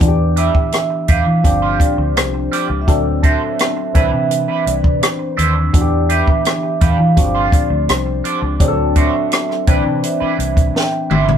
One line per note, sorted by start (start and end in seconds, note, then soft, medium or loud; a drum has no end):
0.00 0.48 E2 medium
0.00 1.01 E3 medium
0.00 1.02 B3 medium
0.00 1.02 D4 medium
0.00 0.08 F4 medium
0.00 0.39 D5 medium
0.00 kick loud
0.00 closed hi-hat medium
0.08 1.05 G4 medium
0.36 0.55 D4 medium
0.36 0.55 G4 medium
0.36 0.55 B4 medium
0.36 1.11 E5 loud
0.36 1.62 E6 soft
0.36 closed hi-hat medium
0.55 kick medium
0.72 muted clean electric guitar stroke soft
0.72 cross-stick medium
0.72 closed hi-hat medium
0.90 muted clean electric guitar stroke soft
1.08 1.25 E2 medium
1.08 1.26 D4 medium
1.08 1.26 G4 medium
1.08 1.25 B4 medium
1.08 1.83 F5 medium
1.08 kick medium
1.08 closed hi-hat medium
1.26 1.42 E3 medium
1.26 muted clean electric guitar stroke soft
1.43 1.76 G1 medium
1.43 2.45 F3 medium
1.43 2.45 C4 medium
1.43 2.45 D4 medium
1.43 2.46 G4 medium
1.43 muted clean electric guitar stroke soft
1.43 kick medium
1.43 closed hi-hat medium
1.62 1.79 F4 medium
1.62 1.80 G4 medium
1.62 1.80 C5 medium
1.80 2.14 D5 medium
1.80 muted clean electric guitar stroke soft
1.80 kick medium
1.80 closed hi-hat medium
1.98 2.16 D2 medium
1.98 muted clean electric guitar stroke soft
2.16 2.47 C2 medium
2.16 2.66 C5 medium
2.16 muted clean electric guitar stroke soft
2.16 cross-stick loud
2.16 closed hi-hat medium
2.34 muted clean electric guitar stroke soft
2.52 2.70 F4 medium
2.52 2.69 G4 medium
2.52 2.69 D5 medium
2.52 closed hi-hat medium
2.70 2.88 C#2 medium
2.70 muted clean electric guitar stroke soft
2.81 2.88 E5 medium
2.87 3.35 D2 medium
2.87 3.88 F#3 medium
2.87 3.89 C4 medium
2.87 3.89 D4 medium
2.87 3.89 A4 medium
2.87 3.04 D5 medium
2.87 kick loud
2.87 closed hi-hat medium
3.22 3.41 D4 medium
3.22 3.42 F#4 medium
3.22 3.42 C5 medium
3.22 3.94 E5 medium
3.22 4.26 A5 medium
3.22 kick medium
3.22 closed hi-hat medium
3.59 muted clean electric guitar stroke soft
3.59 cross-stick loud
3.59 closed hi-hat medium
3.77 muted clean electric guitar stroke soft
3.94 4.11 C2 medium
3.94 5.09 E3 medium
3.94 5.09 C4 medium
3.94 5.09 D4 medium
3.94 4.13 D4 medium
3.94 4.12 E4 medium
3.94 4.02 A4 medium
3.94 4.11 B4 medium
3.94 4.69 E5 medium
3.94 kick medium
3.94 closed hi-hat medium
4.02 5.13 B4 medium
4.12 4.45 C3 medium
4.12 muted clean electric guitar stroke soft
4.31 muted clean electric guitar stroke soft
4.31 closed hi-hat medium
4.48 4.65 D4 medium
4.48 4.65 E4 medium
4.48 4.66 B4 medium
4.66 4.82 C2 medium
4.66 5.04 D5 medium
4.66 muted clean electric guitar stroke soft
4.66 closed hi-hat medium
4.84 5.00 C3 medium
4.84 muted clean electric guitar stroke soft
4.84 kick medium
5.01 5.53 C5 medium
5.01 muted clean electric guitar stroke soft
5.01 cross-stick loud
5.01 closed hi-hat medium
5.19 muted clean electric guitar stroke soft
5.37 5.70 D#2 medium
5.37 5.56 D4 medium
5.37 5.55 E4 medium
5.37 5.55 C5 medium
5.37 6.05 E6 medium
5.37 closed hi-hat medium
5.55 muted clean electric guitar stroke soft
5.73 6.21 E2 loud
5.73 6.74 E3 medium
5.73 6.75 B3 medium
5.73 6.75 D4 medium
5.73 5.81 F#4 medium
5.73 6.11 D5 medium
5.73 kick medium
5.73 closed hi-hat medium
5.81 6.79 G4 medium
6.09 6.27 D4 medium
6.09 6.28 G4 medium
6.09 6.28 B4 medium
6.09 6.84 E5 medium
6.09 7.35 D6 soft
6.09 closed hi-hat medium
6.28 kick medium
6.45 muted clean electric guitar stroke soft
6.45 cross-stick medium
6.45 closed hi-hat medium
6.63 muted clean electric guitar stroke soft
6.81 6.97 E2 medium
6.81 6.99 D4 medium
6.81 6.99 G4 medium
6.81 6.98 B4 medium
6.81 7.55 F5 medium
6.81 kick loud
6.81 closed hi-hat medium
6.99 7.15 E3 medium
6.99 muted clean electric guitar stroke soft
7.16 7.49 G1 medium
7.16 8.18 F3 medium
7.16 8.18 C4 medium
7.16 8.18 D4 medium
7.16 7.24 F#4 medium
7.16 muted clean electric guitar stroke soft
7.16 kick medium
7.16 closed hi-hat medium
7.24 8.22 G4 medium
7.35 7.51 D4 soft
7.35 7.52 F4 medium
7.35 7.52 C5 medium
7.52 7.90 D5 medium
7.52 muted clean electric guitar stroke soft
7.52 kick medium
7.52 closed hi-hat medium
7.70 7.86 D2 medium
7.70 muted clean electric guitar stroke soft
7.88 8.20 C2 medium
7.88 8.39 C5 medium
7.88 muted clean electric guitar stroke soft
7.88 cross-stick loud
7.88 closed hi-hat medium
8.06 muted clean electric guitar stroke soft
8.24 8.42 D4 medium
8.24 8.42 F4 medium
8.24 8.42 D5 medium
8.24 closed hi-hat medium
8.42 8.60 C#2 medium
8.42 muted clean electric guitar stroke soft
8.60 9.08 D2 medium
8.60 9.61 F#3 medium
8.60 9.61 C4 medium
8.60 9.61 D4 medium
8.60 8.67 G#4 medium
8.60 8.98 D5 medium
8.60 kick loud
8.60 closed hi-hat medium
8.68 9.65 A4 medium
8.96 9.14 D4 medium
8.96 9.14 F#4 medium
8.96 9.14 C5 medium
8.96 9.70 E5 medium
8.96 kick medium
8.96 closed hi-hat medium
9.31 muted clean electric guitar stroke soft
9.31 cross-stick loud
9.31 closed hi-hat medium
9.49 muted clean electric guitar stroke soft
9.49 cross-stick soft
9.67 9.84 C2 medium
9.67 10.82 E3 medium
9.67 10.82 C4 medium
9.67 9.85 D4 medium
9.67 10.82 D4 medium
9.67 9.85 E4 medium
9.67 9.84 B4 medium
9.67 10.83 B4 medium
9.67 10.05 D5 medium
9.67 kick medium
9.67 closed hi-hat medium
9.85 10.01 C3 medium
9.85 muted clean electric guitar stroke soft
10.03 11.07 E5 medium
10.03 muted clean electric guitar stroke soft
10.03 closed hi-hat medium
10.20 10.37 D4 medium
10.20 10.38 E4 medium
10.20 10.38 B4 medium
10.20 muted fingered electric bass stroke soft
10.39 10.71 C2 medium
10.39 muted clean electric guitar stroke soft
10.39 closed hi-hat medium
10.56 muted clean electric guitar stroke soft
10.56 kick medium
10.56 closed hi-hat medium
10.74 11.13 G5 medium
10.74 muted clean electric guitar stroke soft
10.74 snare medium
10.92 muted clean electric guitar stroke soft
11.10 11.38 G#1 medium
11.10 11.28 D4 medium
11.10 11.28 E4 medium
11.10 11.28 C5 medium
11.10 11.38 E5 medium
11.10 mid tom medium
11.28 muted clean electric guitar stroke soft
11.28 floor tom medium